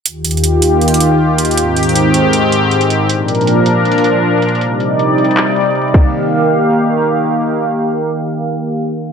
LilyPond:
<<
  \new Staff \with { instrumentName = "Analog synth pad" } { \time 4/4 \key ees \major \tempo 4 = 158 <ees, ees f' g'>1 | <aes, ees c' g'>1 | <bes, f d' bes'>1 | <c g ees' d''>2.~ <c g ees' d''>8 <ees bes g' f''>8~ |
<ees bes g' f''>1~ | <ees bes g' f''>1 | }
  \new DrumStaff \with { instrumentName = "Drums" } \drummode { \time 4/4 \tuplet 3/2 { hh16 r16 r16 hh16 hh16 hh16 } hh8 hh8 \tuplet 3/2 { hh16 hh16 hh16 hh16 r16 r16 r16 r16 r16 hh16 hh16 hh16 } | \tuplet 3/2 { hh16 r16 r16 hh16 hh16 hh16 } hh8 hh8 hh8 hh8 hh16 hh16 hh8 | \tuplet 3/2 { hh16 r16 r16 hh16 hh16 hh16 } hh8 hh8 \tuplet 3/2 { hh16 hh16 hh16 hh16 r16 r16 r16 r16 r16 hh16 hh16 hh16 } | hh8 hh8 \tuplet 3/2 { hh16 r16 r16 hh16 hh16 hh16 } <hc hh>32 hh32 hh32 hh32 hh32 hh32 hh32 hh32 \tuplet 3/2 { hh16 hh16 hh16 <cymc bd>16 r16 r16 } |
r4 r4 r4 r4 | r4 r4 r4 r4 | }
>>